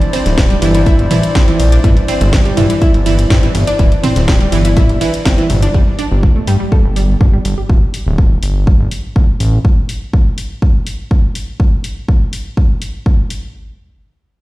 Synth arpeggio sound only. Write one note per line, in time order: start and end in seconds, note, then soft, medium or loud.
0.13 0.19 C4 loud
0.13 0.19 C5 medium
0.50 0.61 G3 medium
0.50 0.61 G4 medium
0.62 0.72 E3 loud
0.62 0.72 E4 medium
0.75 0.86 E3 medium
0.75 0.85 E4 medium
0.86 0.92 E4 loud
0.86 0.92 E5 medium
1.11 1.17 E3 loud
1.11 1.17 E4 medium
1.35 1.41 C4 loud
1.35 1.41 C5 medium
1.48 1.53 E3 loud
1.48 1.53 E4 medium
1.72 1.83 D4 medium
1.72 1.83 D5 medium
1.84 1.90 E3 loud
1.84 1.90 E4 medium
2.08 2.14 C4 loud
2.08 2.14 C5 medium
2.45 2.57 G3 medium
2.45 2.57 G4 medium
2.57 2.67 E3 loud
2.57 2.67 E4 medium
2.70 2.81 E3 medium
2.70 2.80 E4 medium
2.82 2.88 E4 loud
2.82 2.87 E5 medium
3.06 3.12 E3 loud
3.06 3.12 E4 medium
3.30 3.36 C4 loud
3.30 3.36 C5 medium
3.43 3.48 E3 loud
3.43 3.48 E4 medium
3.67 3.79 D4 medium
3.67 3.79 D5 medium
3.79 3.85 E3 loud
3.79 3.85 E4 medium
4.03 4.09 C4 loud
4.03 4.09 C5 medium
4.41 4.52 G3 medium
4.41 4.52 G4 medium
4.52 4.62 E3 loud
4.52 4.62 E4 medium
4.65 4.76 E3 medium
4.65 4.75 E4 medium
4.77 4.83 E4 loud
4.77 4.83 E5 medium
5.01 5.07 E3 loud
5.01 5.07 E4 medium
5.26 5.31 C4 loud
5.26 5.31 C5 medium
5.38 5.44 E3 loud
5.38 5.44 E4 medium
5.63 5.74 D4 medium
5.63 5.74 D5 medium
5.74 5.80 G3 loud
5.99 6.05 D4 loud
6.36 6.47 A3 medium
6.48 6.57 G3 loud
6.60 6.71 G3 medium
6.72 6.78 A4 medium
6.96 7.02 G3 loud
7.21 7.27 D4 loud
7.33 7.39 G3 loud
7.58 7.69 G4 medium